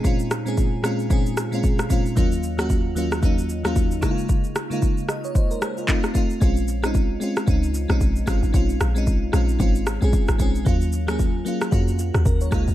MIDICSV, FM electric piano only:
0, 0, Header, 1, 2, 480
1, 0, Start_track
1, 0, Key_signature, -5, "minor"
1, 0, Tempo, 530973
1, 40, Time_signature, 4, 2, 24, 8
1, 11522, End_track
2, 0, Start_track
2, 0, Title_t, "FM electric piano"
2, 0, Program_c, 0, 5
2, 0, Control_c, 0, 64, 127
2, 0, Note_on_c, 0, 46, 82
2, 0, Note_on_c, 0, 56, 77
2, 0, Note_on_c, 0, 60, 79
2, 0, Note_on_c, 0, 61, 78
2, 0, Note_on_c, 0, 63, 92
2, 0, Note_on_c, 0, 65, 95
2, 0, Note_on_c, 0, 68, 94
2, 27, Note_off_c, 0, 46, 0
2, 27, Note_on_c, 0, 46, 88
2, 35, Note_off_c, 0, 56, 0
2, 35, Note_on_c, 0, 56, 81
2, 43, Note_off_c, 0, 60, 0
2, 43, Note_on_c, 0, 60, 80
2, 50, Note_off_c, 0, 61, 0
2, 50, Note_on_c, 0, 61, 81
2, 58, Note_off_c, 0, 65, 0
2, 58, Note_on_c, 0, 65, 97
2, 329, Note_off_c, 0, 46, 0
2, 333, Note_off_c, 0, 56, 0
2, 337, Note_off_c, 0, 60, 0
2, 341, Note_off_c, 0, 61, 0
2, 345, Note_off_c, 0, 65, 0
2, 407, Note_on_c, 0, 46, 79
2, 414, Note_on_c, 0, 56, 73
2, 422, Note_on_c, 0, 60, 73
2, 429, Note_on_c, 0, 61, 75
2, 437, Note_off_c, 0, 68, 0
2, 437, Note_on_c, 0, 68, 90
2, 693, Note_off_c, 0, 46, 0
2, 697, Note_off_c, 0, 56, 0
2, 701, Note_off_c, 0, 60, 0
2, 705, Note_off_c, 0, 61, 0
2, 708, Note_off_c, 0, 68, 0
2, 747, Note_on_c, 0, 46, 81
2, 754, Note_on_c, 0, 56, 75
2, 763, Note_on_c, 0, 60, 76
2, 770, Note_on_c, 0, 61, 79
2, 778, Note_on_c, 0, 65, 89
2, 953, Note_off_c, 0, 46, 0
2, 957, Note_off_c, 0, 56, 0
2, 961, Note_off_c, 0, 60, 0
2, 965, Note_off_c, 0, 61, 0
2, 969, Note_off_c, 0, 65, 0
2, 987, Note_on_c, 0, 46, 82
2, 995, Note_on_c, 0, 56, 78
2, 1003, Note_on_c, 0, 60, 78
2, 1010, Note_on_c, 0, 61, 79
2, 1018, Note_on_c, 0, 68, 97
2, 1289, Note_off_c, 0, 46, 0
2, 1293, Note_off_c, 0, 56, 0
2, 1297, Note_off_c, 0, 60, 0
2, 1301, Note_off_c, 0, 61, 0
2, 1305, Note_off_c, 0, 68, 0
2, 1367, Note_on_c, 0, 46, 82
2, 1375, Note_on_c, 0, 56, 77
2, 1382, Note_on_c, 0, 60, 79
2, 1390, Note_on_c, 0, 61, 78
2, 1398, Note_on_c, 0, 65, 89
2, 1653, Note_off_c, 0, 46, 0
2, 1657, Note_off_c, 0, 56, 0
2, 1661, Note_off_c, 0, 60, 0
2, 1665, Note_off_c, 0, 61, 0
2, 1669, Note_off_c, 0, 65, 0
2, 1706, Note_on_c, 0, 46, 82
2, 1714, Note_on_c, 0, 56, 75
2, 1722, Note_on_c, 0, 60, 76
2, 1729, Note_on_c, 0, 61, 78
2, 1736, Note_on_c, 0, 65, 95
2, 1913, Note_off_c, 0, 46, 0
2, 1917, Note_off_c, 0, 56, 0
2, 1920, Note_off_c, 0, 60, 0
2, 1924, Note_off_c, 0, 61, 0
2, 1928, Note_off_c, 0, 65, 0
2, 1947, Note_on_c, 0, 39, 90
2, 1955, Note_on_c, 0, 54, 81
2, 1962, Note_on_c, 0, 58, 84
2, 1971, Control_c, 0, 64, 0
2, 1971, Note_on_c, 0, 61, 83
2, 1977, Note_on_c, 0, 65, 96
2, 1980, Note_off_c, 0, 63, 0
2, 2111, Control_c, 0, 64, 127
2, 2249, Note_off_c, 0, 39, 0
2, 2253, Note_off_c, 0, 54, 0
2, 2257, Note_off_c, 0, 58, 0
2, 2261, Note_off_c, 0, 61, 0
2, 2264, Note_off_c, 0, 65, 0
2, 2325, Note_on_c, 0, 39, 79
2, 2333, Note_on_c, 0, 54, 73
2, 2341, Note_on_c, 0, 58, 74
2, 2349, Note_on_c, 0, 61, 76
2, 2356, Note_on_c, 0, 66, 88
2, 2612, Note_off_c, 0, 39, 0
2, 2616, Note_off_c, 0, 54, 0
2, 2620, Note_off_c, 0, 58, 0
2, 2624, Note_off_c, 0, 61, 0
2, 2628, Note_off_c, 0, 66, 0
2, 2667, Note_on_c, 0, 39, 84
2, 2675, Note_on_c, 0, 54, 75
2, 2683, Note_on_c, 0, 58, 77
2, 2690, Note_on_c, 0, 61, 78
2, 2697, Note_on_c, 0, 65, 94
2, 2873, Note_off_c, 0, 39, 0
2, 2877, Note_off_c, 0, 54, 0
2, 2881, Note_off_c, 0, 58, 0
2, 2884, Note_off_c, 0, 61, 0
2, 2888, Note_off_c, 0, 65, 0
2, 2908, Note_on_c, 0, 39, 85
2, 2915, Note_on_c, 0, 54, 79
2, 2922, Note_on_c, 0, 58, 76
2, 2930, Note_on_c, 0, 61, 78
2, 2938, Note_on_c, 0, 63, 92
2, 3209, Note_off_c, 0, 39, 0
2, 3213, Note_off_c, 0, 54, 0
2, 3217, Note_off_c, 0, 58, 0
2, 3221, Note_off_c, 0, 61, 0
2, 3225, Note_off_c, 0, 63, 0
2, 3286, Note_on_c, 0, 39, 82
2, 3294, Note_on_c, 0, 54, 78
2, 3302, Note_on_c, 0, 58, 80
2, 3309, Note_on_c, 0, 61, 73
2, 3317, Note_on_c, 0, 65, 95
2, 3573, Note_off_c, 0, 39, 0
2, 3577, Note_off_c, 0, 54, 0
2, 3581, Note_off_c, 0, 58, 0
2, 3584, Note_off_c, 0, 61, 0
2, 3588, Note_off_c, 0, 65, 0
2, 3627, Note_on_c, 0, 49, 86
2, 3635, Note_on_c, 0, 56, 81
2, 3642, Note_on_c, 0, 58, 80
2, 3651, Note_on_c, 0, 63, 77
2, 3652, Control_c, 0, 64, 0
2, 3657, Note_on_c, 0, 64, 79
2, 3715, Note_on_c, 0, 65, 95
2, 3716, Note_off_c, 0, 64, 0
2, 3798, Control_c, 0, 64, 127
2, 4114, Note_off_c, 0, 49, 0
2, 4117, Note_off_c, 0, 56, 0
2, 4121, Note_off_c, 0, 58, 0
2, 4125, Note_off_c, 0, 63, 0
2, 4158, Note_off_c, 0, 65, 0
2, 4248, Note_on_c, 0, 49, 82
2, 4255, Note_on_c, 0, 56, 71
2, 4263, Note_on_c, 0, 58, 76
2, 4270, Note_on_c, 0, 63, 77
2, 4278, Note_on_c, 0, 65, 90
2, 4534, Note_off_c, 0, 49, 0
2, 4537, Note_off_c, 0, 56, 0
2, 4541, Note_off_c, 0, 58, 0
2, 4545, Note_off_c, 0, 63, 0
2, 4549, Note_off_c, 0, 65, 0
2, 4604, Note_on_c, 0, 75, 63
2, 4734, Note_off_c, 0, 75, 0
2, 4743, Note_on_c, 0, 73, 72
2, 4837, Note_off_c, 0, 73, 0
2, 4842, Note_on_c, 0, 72, 71
2, 4973, Note_off_c, 0, 72, 0
2, 4981, Note_on_c, 0, 70, 69
2, 5076, Note_off_c, 0, 70, 0
2, 5083, Note_on_c, 0, 68, 63
2, 5214, Note_off_c, 0, 68, 0
2, 5224, Note_on_c, 0, 65, 63
2, 5309, Note_on_c, 0, 57, 90
2, 5318, Note_on_c, 0, 60, 83
2, 5328, Note_off_c, 0, 65, 0
2, 5329, Note_on_c, 0, 63, 81
2, 5330, Control_c, 0, 64, 0
2, 5338, Note_on_c, 0, 65, 97
2, 5497, Control_c, 0, 64, 127
2, 5514, Note_off_c, 0, 57, 0
2, 5519, Note_off_c, 0, 60, 0
2, 5524, Note_off_c, 0, 63, 0
2, 5529, Note_off_c, 0, 65, 0
2, 5549, Note_on_c, 0, 57, 82
2, 5559, Note_on_c, 0, 60, 75
2, 5569, Note_on_c, 0, 63, 75
2, 5579, Note_on_c, 0, 65, 97
2, 5754, Note_off_c, 0, 57, 0
2, 5759, Note_off_c, 0, 60, 0
2, 5764, Note_off_c, 0, 63, 0
2, 5769, Note_off_c, 0, 65, 0
2, 5789, Note_on_c, 0, 56, 90
2, 5799, Note_on_c, 0, 60, 81
2, 5809, Note_on_c, 0, 61, 80
2, 5812, Control_c, 0, 64, 0
2, 5819, Note_on_c, 0, 65, 95
2, 5956, Control_c, 0, 64, 127
2, 6090, Note_off_c, 0, 56, 0
2, 6095, Note_off_c, 0, 60, 0
2, 6100, Note_off_c, 0, 61, 0
2, 6105, Note_off_c, 0, 65, 0
2, 6169, Note_on_c, 0, 56, 81
2, 6178, Note_on_c, 0, 60, 72
2, 6190, Note_on_c, 0, 61, 72
2, 6199, Note_on_c, 0, 63, 88
2, 6454, Note_off_c, 0, 56, 0
2, 6459, Note_off_c, 0, 60, 0
2, 6465, Note_off_c, 0, 61, 0
2, 6469, Note_off_c, 0, 63, 0
2, 6509, Note_on_c, 0, 56, 82
2, 6520, Note_on_c, 0, 60, 80
2, 6529, Note_on_c, 0, 61, 74
2, 6540, Note_on_c, 0, 65, 91
2, 6714, Note_off_c, 0, 56, 0
2, 6719, Note_off_c, 0, 60, 0
2, 6724, Note_off_c, 0, 61, 0
2, 6729, Note_off_c, 0, 65, 0
2, 6748, Note_on_c, 0, 56, 85
2, 6757, Note_on_c, 0, 60, 79
2, 6768, Note_on_c, 0, 61, 77
2, 6778, Note_on_c, 0, 63, 92
2, 7049, Note_off_c, 0, 56, 0
2, 7054, Note_off_c, 0, 60, 0
2, 7060, Note_off_c, 0, 61, 0
2, 7065, Note_off_c, 0, 63, 0
2, 7126, Note_on_c, 0, 56, 84
2, 7136, Note_on_c, 0, 60, 79
2, 7146, Note_on_c, 0, 61, 78
2, 7155, Note_on_c, 0, 63, 96
2, 7413, Note_off_c, 0, 56, 0
2, 7418, Note_off_c, 0, 60, 0
2, 7423, Note_off_c, 0, 61, 0
2, 7428, Note_off_c, 0, 63, 0
2, 7467, Note_on_c, 0, 56, 86
2, 7477, Note_on_c, 0, 60, 77
2, 7487, Note_on_c, 0, 61, 76
2, 7498, Note_on_c, 0, 65, 90
2, 7673, Note_off_c, 0, 56, 0
2, 7678, Note_off_c, 0, 60, 0
2, 7683, Note_off_c, 0, 61, 0
2, 7688, Note_off_c, 0, 65, 0
2, 7707, Note_on_c, 0, 56, 87
2, 7717, Note_on_c, 0, 60, 78
2, 7727, Note_on_c, 0, 61, 83
2, 7737, Note_on_c, 0, 65, 101
2, 8009, Note_off_c, 0, 56, 0
2, 8014, Note_off_c, 0, 60, 0
2, 8019, Note_off_c, 0, 61, 0
2, 8024, Note_off_c, 0, 65, 0
2, 8087, Note_on_c, 0, 56, 84
2, 8097, Note_on_c, 0, 60, 72
2, 8106, Note_on_c, 0, 61, 71
2, 8117, Note_on_c, 0, 63, 94
2, 8373, Note_off_c, 0, 56, 0
2, 8378, Note_off_c, 0, 60, 0
2, 8383, Note_off_c, 0, 61, 0
2, 8388, Note_off_c, 0, 63, 0
2, 8425, Note_on_c, 0, 56, 83
2, 8436, Note_on_c, 0, 60, 76
2, 8447, Note_on_c, 0, 61, 77
2, 8456, Note_on_c, 0, 65, 90
2, 8632, Note_off_c, 0, 56, 0
2, 8638, Note_off_c, 0, 60, 0
2, 8643, Note_off_c, 0, 61, 0
2, 8648, Note_off_c, 0, 65, 0
2, 8666, Note_on_c, 0, 56, 87
2, 8677, Note_on_c, 0, 60, 78
2, 8686, Note_on_c, 0, 61, 81
2, 8697, Note_on_c, 0, 65, 94
2, 8969, Note_off_c, 0, 56, 0
2, 8974, Note_off_c, 0, 60, 0
2, 8979, Note_off_c, 0, 61, 0
2, 8984, Note_off_c, 0, 65, 0
2, 9046, Note_on_c, 0, 56, 83
2, 9057, Note_on_c, 0, 60, 75
2, 9067, Note_on_c, 0, 61, 76
2, 9077, Note_on_c, 0, 68, 94
2, 9333, Note_off_c, 0, 56, 0
2, 9338, Note_off_c, 0, 60, 0
2, 9343, Note_off_c, 0, 61, 0
2, 9348, Note_off_c, 0, 68, 0
2, 9387, Note_on_c, 0, 56, 87
2, 9397, Note_on_c, 0, 60, 77
2, 9408, Note_on_c, 0, 61, 77
2, 9418, Note_on_c, 0, 68, 94
2, 9593, Note_off_c, 0, 56, 0
2, 9598, Note_off_c, 0, 60, 0
2, 9603, Note_off_c, 0, 61, 0
2, 9609, Note_off_c, 0, 68, 0
2, 9626, Note_on_c, 0, 54, 89
2, 9636, Note_on_c, 0, 58, 82
2, 9647, Note_on_c, 0, 61, 84
2, 9654, Control_c, 0, 64, 0
2, 9657, Note_on_c, 0, 65, 97
2, 9809, Control_c, 0, 64, 127
2, 9928, Note_off_c, 0, 54, 0
2, 9934, Note_off_c, 0, 58, 0
2, 9939, Note_off_c, 0, 61, 0
2, 9944, Note_off_c, 0, 65, 0
2, 10007, Note_on_c, 0, 54, 80
2, 10017, Note_on_c, 0, 58, 76
2, 10028, Note_on_c, 0, 61, 78
2, 10038, Note_on_c, 0, 68, 88
2, 10293, Note_off_c, 0, 54, 0
2, 10298, Note_off_c, 0, 58, 0
2, 10304, Note_off_c, 0, 61, 0
2, 10309, Note_off_c, 0, 68, 0
2, 10348, Note_on_c, 0, 54, 82
2, 10358, Note_on_c, 0, 58, 79
2, 10367, Note_on_c, 0, 61, 74
2, 10379, Note_on_c, 0, 65, 92
2, 10554, Note_off_c, 0, 54, 0
2, 10558, Note_off_c, 0, 58, 0
2, 10563, Note_off_c, 0, 61, 0
2, 10569, Note_off_c, 0, 65, 0
2, 10587, Note_on_c, 0, 66, 87
2, 10598, Note_on_c, 0, 58, 80
2, 10607, Note_on_c, 0, 61, 79
2, 10617, Note_on_c, 0, 65, 96
2, 10832, Note_off_c, 0, 65, 0
2, 10842, Note_on_c, 0, 65, 63
2, 10889, Note_off_c, 0, 66, 0
2, 10894, Note_off_c, 0, 58, 0
2, 10899, Note_off_c, 0, 61, 0
2, 10973, Note_off_c, 0, 65, 0
2, 10983, Note_on_c, 0, 66, 69
2, 11077, Note_off_c, 0, 66, 0
2, 11083, Note_on_c, 0, 70, 72
2, 11214, Note_off_c, 0, 70, 0
2, 11222, Note_on_c, 0, 73, 67
2, 11308, Note_on_c, 0, 56, 91
2, 11318, Note_on_c, 0, 58, 83
2, 11328, Note_on_c, 0, 63, 80
2, 11333, Control_c, 0, 64, 0
2, 11339, Note_on_c, 0, 65, 99
2, 11449, Note_off_c, 0, 73, 0
2, 11481, Control_c, 0, 64, 127
2, 11522, Note_off_c, 0, 56, 0
2, 11522, Note_off_c, 0, 58, 0
2, 11522, Note_off_c, 0, 63, 0
2, 11522, Note_off_c, 0, 65, 0
2, 11522, End_track
0, 0, End_of_file